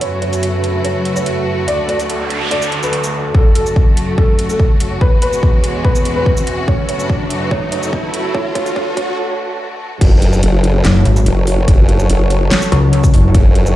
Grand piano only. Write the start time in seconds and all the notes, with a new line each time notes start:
0.01 C#5
0.22 C#5
0.84 C#5
1.16 C#5
1.68 D5
1.89 D5
2.51 D5
2.83 B4
3.34 A4
3.55 A4
4.18 A4
4.50 A4
5.01 B4
5.22 B4
5.85 B4
6.16 B4
6.68 C#5
6.89 C#5
7.51 C#5
7.72 C#5
8.34 C#5
8.55 C#5
8.76 C#5
8.97 C#5